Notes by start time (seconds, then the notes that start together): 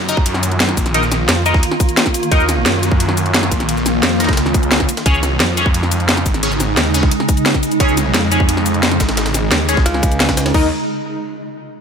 Already playing: F#2 D#3 A#3 F4
0.09 D#4 A#4 D#5, closed hi-hat, ride, cabasa
0.17 kick
0.26 closed hi-hat, ride
0.34 snare
0.43 closed hi-hat, ride, cabasa
0.52 closed hi-hat
0.60 snare, closed hi-hat, ride
0.69 snare, closed hi-hat
0.77 A#1, kick, closed hi-hat, ride, cabasa
0.86 snare, closed hi-hat
0.94 D#4 A#4 D#5, closed hi-hat, ride
1.03 snare, cabasa
1.12 snare, closed hi-hat, ride, cabasa
1.29 F2, snare, closed hi-hat, ride
1.46 D#4 A#4 D#5, closed hi-hat, ride, cabasa
1.54 kick, snare
1.63 closed hi-hat, ride
1.71 snare
1.80 kick, closed hi-hat, ride, cabasa
1.89 closed hi-hat, cabasa
1.97 snare, closed hi-hat, ride
2.06 kick, snare, closed hi-hat
2.14 closed hi-hat, ride, cabasa
2.23 closed hi-hat, cabasa
2.32 D#2 D#4 A#4 D#5, kick, closed hi-hat, ride
2.40 cabasa
2.49 snare, closed hi-hat, ride, cabasa
2.66 F#2, snare, closed hi-hat, ride
2.83 closed hi-hat, ride, cabasa
2.92 kick
3.00 closed hi-hat, ride
3.09 snare
3.17 closed hi-hat, ride, cabasa
3.26 closed hi-hat
3.34 snare, closed hi-hat, ride
3.43 snare, closed hi-hat
3.52 A#1, kick, closed hi-hat, ride, cabasa
3.60 snare, closed hi-hat
3.69 closed hi-hat, ride
3.77 snare, cabasa
3.86 snare, closed hi-hat, ride, cabasa
4.03 F2, snare, closed hi-hat, ride
4.20 D#4 A#4 D#5, snare, closed hi-hat, ride, cabasa
4.24 snare, ride
4.29 kick, snare, ride
4.33 snare, ride
4.37 C#2, snare, closed hi-hat, ride
4.46 snare
4.54 kick, closed hi-hat, ride, cabasa
4.63 closed hi-hat, cabasa
4.72 snare, closed hi-hat, ride
4.80 kick, snare, closed hi-hat
4.89 closed hi-hat, ride, cabasa
4.97 snare, closed hi-hat, ride, cabasa
5.06 C#2 C#3 G#3 C#4 D#4 G#4 C#5, kick, closed hi-hat, ride
5.14 cabasa
5.23 snare, closed hi-hat, ride, cabasa
5.40 F2, snare, closed hi-hat, ride
5.57 C#4 G#4 C#5, closed hi-hat, ride, cabasa
5.66 kick
5.74 closed hi-hat, ride
5.83 snare
5.92 closed hi-hat, ride, cabasa
6.00 closed hi-hat
6.09 snare, closed hi-hat, ride
6.17 snare, closed hi-hat
6.26 G#1, kick, closed hi-hat, ride, cabasa
6.34 snare, closed hi-hat
6.43 C#4 G#4 C#5, closed hi-hat, ride
6.51 snare, cabasa
6.60 snare, closed hi-hat, ride, cabasa
6.77 D#2, snare, closed hi-hat, ride
6.94 C#4 G#4 C#5, closed hi-hat, ride, cabasa
7.03 kick, snare
7.11 closed hi-hat, ride
7.20 snare
7.29 kick, closed hi-hat, ride, cabasa
7.37 closed hi-hat, cabasa
7.46 snare, closed hi-hat, ride
7.54 kick, snare, closed hi-hat
7.63 closed hi-hat, ride, cabasa
7.72 closed hi-hat, cabasa
7.80 C#2 C#4 G#4 C#5, kick, closed hi-hat, ride
7.89 cabasa
7.97 snare, closed hi-hat, ride, cabasa
8.14 F2, snare, closed hi-hat, ride
8.32 C#4 G#4 C#5, closed hi-hat, ride, cabasa
8.40 kick
8.49 closed hi-hat, ride
8.57 snare
8.66 closed hi-hat, ride, cabasa
8.74 closed hi-hat
8.83 snare, closed hi-hat, ride
8.92 snare, closed hi-hat
9.00 G#1, kick, snare, closed hi-hat, ride, cabasa
9.09 snare, closed hi-hat, ride
9.17 snare, closed hi-hat, ride
9.26 snare, ride, cabasa
9.34 snare, closed hi-hat, ride, cabasa
9.52 D#2, snare, closed hi-hat, ride
9.69 C#4 G#4 C#5, closed hi-hat, ride, cabasa
9.77 kick, snare
9.86 C#2, closed hi-hat, ride
9.94 snare
10.03 kick, closed hi-hat, ride, cabasa
10.12 closed hi-hat, cabasa
10.20 snare, closed hi-hat, ride
10.29 kick, snare, closed hi-hat, ride
10.37 snare, closed hi-hat, ride, cabasa
10.46 snare, closed hi-hat, ride
10.54 D#2 D#4 A#4 D#5, kick, crash